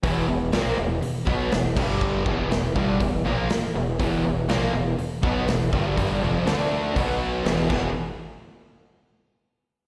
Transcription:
<<
  \new Staff \with { instrumentName = "Distorted electric guitar" } { \clef bass \time 4/4 \key e \minor \tempo 4 = 121 <e, b, e>8 <e, b,>8 <ais, f ais>8 <e, b,>8 r8 <b, fis b>8 <e, b,>8 <g, d g>8~ | <g, d g>8 <e, b, e>8 <e, b,>8 <g, d g>8 <e, b,>8 <ais, f ais>8 r8 <e, b,>8 | <e, b, e>8 <e, b,>8 <ais, f ais>8 <e, b,>8 r8 <b, fis b>8 <e, b,>8 <g, d g>8 | <g, d g>8 <f, c f>8 <d a d'>4 <b, fis b>4 <e, b, e>8 <e, b, e>8 |
r1 | }
  \new Staff \with { instrumentName = "Distorted electric guitar" } { \clef bass \time 4/4 \key e \minor <e, b, e>8 <e, b,>8 <ais, f ais>8 <e, b,>8 r8 <b, fis b>8 <e, b,>8 <g, d g>8~ | <g, d g>8 <e, b, e>8 <e, b,>8 <g, d g>8 <e, b,>8 <ais, f ais>8 r8 <e, b,>8 | <e, b, e>8 <e, b,>8 <ais, f ais>8 <e, b,>8 r8 <b, fis b>8 <e, b,>8 <g, d g>8 | <g, d g>8 <f, c f>8 <d a d'>4 <b, fis b>4 <e, b, e>8 <e, b, e>8 |
r1 | }
  \new Staff \with { instrumentName = "Distorted electric guitar" } { \clef bass \time 4/4 \key e \minor <e, b, e>8 <e, b,>8 <ais, f ais>8 <e, b,>8 r8 <b, fis b>8 <e, b,>8 <g, d g>8~ | <g, d g>8 <e, b, e>8 <e, b,>8 <g, d g>8 <e, b,>8 <ais, f ais>8 r8 <e, b,>8 | <e, b, e>8 <e, b,>8 <ais, f ais>8 <e, b,>8 r8 <b, fis b>8 <e, b,>8 <g, d g>8 | <g, d g>8 <f, c f>8 <d a d'>4 <b, fis b>4 <e, b, e>8 <e, b, e>8 |
r1 | }
  \new Staff \with { instrumentName = "Analog synth bass" } { \clef bass \time 4/4 \key e \minor e,,8 e,,8 ais,,8 e,,8 e,,8 b,,8 e,,8 g,,8~ | g,,8 e,,8 e,,8 g,,8 e,,8 ais,,8 e,,8 e,,8 | e,,8 e,,8 ais,,8 e,,8 e,,8 b,,8 e,,8 g,,8 | g,,8 f,,8 d,4 b,,4 e,,8 e,,8 |
r1 | }
  \new DrumStaff \with { instrumentName = "Drums" } \drummode { \time 4/4 <hho bd>4 <hho sn>4 hho8 bd8 <hho sn>8 <cymc bd>8 | bd8 bd8 <hho sn>8 bd8 <hho bd>4 <hho sn>4 | <hho bd>4 <hho sn>4 hho8 bd8 <hho sn>8 bd8 | <hho bd>4 <hho sn>4 <hho bd>4 <hho sn>8 <cymc bd>8 |
r4 r4 r4 r4 | }
>>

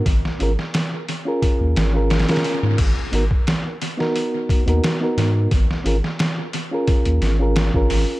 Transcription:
<<
  \new Staff \with { instrumentName = "Reed electric piano" } { \time 4/4 \key gis \dorian \tempo 4 = 88 r8 <cis' eis' gis' ais'>16 r4 <cis' eis' gis' ais'>4 <cis' eis' gis' ais'>8 <cis' eis' gis' ais'>8. | r8 <b dis' fis' ais'>16 r4 <b dis' fis' ais'>4 <b dis' fis' ais'>8 <b dis' fis' ais'>8. | r8 <cis' eis' gis' ais'>16 r4 <cis' eis' gis' ais'>4 <cis' eis' gis' ais'>8 <cis' eis' gis' ais'>8. | }
  \new Staff \with { instrumentName = "Sub bass" } { \clef bass \time 4/4 \key gis \dorian gis,,16 r16 gis,,16 r4. dis,16 gis,,8. r8 gis,16 | gis,,16 r16 gis,,16 r2 dis,16 r8 gis,8 | gis,,16 r16 gis,,16 r4. dis,16 gis,,8. gis,,16 gis,,16 r16 | }
  \new DrumStaff \with { instrumentName = "Drums" } \drummode { \time 4/4 <hho bd>16 sn16 hho16 sn16 <hho sn>8 hho8 <hho bd>8 <hho sn>8 <hho sn>32 <hho sn>32 <hho sn>32 <hho sn>32 hho8 | <cymc hho bd>8 hho16 bd16 <hho sn>8 hho16 sn16 hho8 <hho bd>16 hh16 <hho sn>8 <hho sn>8 | <hho bd>16 sn16 hho16 sn16 <hho sn>8 hho8 <hho bd>16 hh16 <hho sn>8 <hho sn>16 bd16 hho8 | }
>>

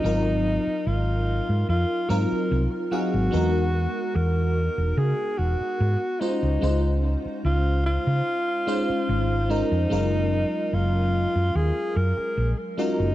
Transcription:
<<
  \new Staff \with { instrumentName = "Alto saxophone" } { \time 4/4 \key des \major \tempo 4 = 73 ees'4 f'4 f'8 bes'8 r8 ges'8~ | ges'4 ais'4 gis'8 fis'4 ees'8~ | ees'8 r8 f'8 f'2 ees'8~ | ees'4 f'4 aes'8 bes'8 r8 ees'8 | }
  \new Staff \with { instrumentName = "FM electric piano" } { \time 4/4 \key des \major <ges c' ees' f' bes'>2~ <ges c' ees' f' bes'>8 <ges c' ees' f' bes'>4 <ges c' ees' aes' f''>8 | <gis b dis' fis' ais'>2.~ <gis b dis' fis' ais'>8 <aes des' ees' f' c''>8 | <aes des' ees' f' c''>2~ <aes des' ees' f' c''>8 <aes des' ees' f' c''>4 <aes des' ees' f' bes'>8 | <ges aes des' f' bes'>2.~ <ges aes des' f' bes'>8 <aes des' f' ges' bes'>8 | }
  \new Staff \with { instrumentName = "Fingered electric bass" } { \clef bass \time 4/4 \key des \major aes,,8. r16 aes,,8. aes,16 f,16 r16 aes,16 r16 c,16 r8 aes,,16 | e,8. r16 e,8. e,,16 des16 r16 e,,16 r16 gis,16 r8 des,16 | des,8. r16 des,8. des16 r4 aes,,8. f,16 | ges,,8. r16 ges,,8. ges,16 ees,16 r16 ges,16 r16 bes,,16 r8 ges,,16 | }
>>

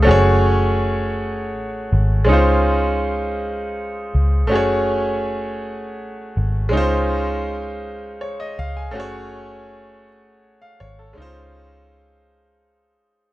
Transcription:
<<
  \new Staff \with { instrumentName = "Grand piano" } { \time 6/8 \key des \major \tempo 4. = 54 << { r2. | r2. | r2. | r2 des''16 ees''16 f''16 aes''16~ |
aes''16 r2 f''16 des''16 a'16~ | a'16 r2 r8. | } \\ { <a des' ges' aes' des''>2. | <aes des' ees' f' c''>2. | <a des' ges' aes' des''>2. | <aes des' ees' f' c''>2. |
<a des' ges' aes' des''>2. | <aes des' ees' f' c''>2. | } >> }
  \new Staff \with { instrumentName = "Fingered electric bass" } { \clef bass \time 6/8 \key des \major ges,,2 a,,8 aes,,8 | des,2~ des,8 des,8 | ges,,2 a,,8 aes,,8 | des,2~ des,8 des,8 |
ges,,2 a,,8 aes,,8 | des,2~ des,8 r8 | }
>>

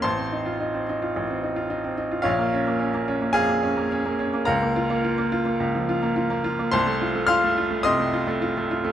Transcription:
<<
  \new Staff \with { instrumentName = "Grand piano" } { \time 4/4 \key bes \minor \tempo 4 = 107 <c'' a'' c'''>2.~ <c'' a'' c'''>8 r8 | <f' des'' f''>2 <aes' f'' aes''>2 | <bes' f'' bes''>2.~ <bes' f'' bes''>8 r8 | <c'' a'' c'''>4 <f'' c''' f'''>4 <ees'' c''' ees'''>2 | }
  \new Staff \with { instrumentName = "Grand piano" } { \time 4/4 \key bes \minor a,,16 c'16 ees'16 f'16 ees'16 c'16 ees'16 f'16 a,,16 c'16 ees'16 f'16 ees'16 c'16 ees'16 f'16 | bes,,16 bes16 des'16 bes16 des'16 bes16 des'16 bes16 f,16 bes16 des'16 bes16 des'16 bes16 des'16 bes16 | des,16 bes16 f'16 bes16 f'16 bes16 f'16 bes16 des,16 f16 f'16 bes16 f'16 bes16 f'16 bes16 | c,16 a16 f'16 a16 f'16 a16 f'16 a16 c16 a16 f'16 a16 f'16 a16 f'16 a16 | }
>>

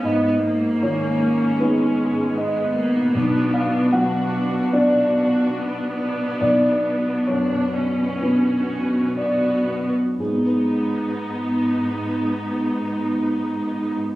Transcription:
<<
  \new Staff \with { instrumentName = "Grand piano" } { \time 4/4 \key b \lydian \tempo 4 = 70 dis''4 cis''4 b'4 dis''4 | r8 eis''8 fis''4 d''2 | d''4 cis''4 b'4 d''4 | <gis, gis b dis' gis' b'>1 | }
  \new Staff \with { instrumentName = "Grand piano" } { \clef bass \time 4/4 \key b \lydian gis,4 dis4 <b dis'>2 | b,,4 fis4 <b d'>2 | b,,4 fis,4 <b d'>2 | r1 | }
  \new Staff \with { instrumentName = "Viola section" } { \time 4/4 \key b \lydian << { b4 cis'2 b4 | d'4 fis'4 fis'4 d'8 d'8~ | d'2 fis'4 fis'8. r16 | dis'1 | } \\ { b8 ais4. gis4 gis8 ais8 | b4 d'4 d'8 d'8 b4~ | b4 d'8 cis'4. b8. r16 | b1 | } >> }
  \new Staff \with { instrumentName = "Cello section" } { \clef bass \time 4/4 \key b \lydian gis,1 | b,1 | b,2.~ b,8. r16 | gis,1 | }
>>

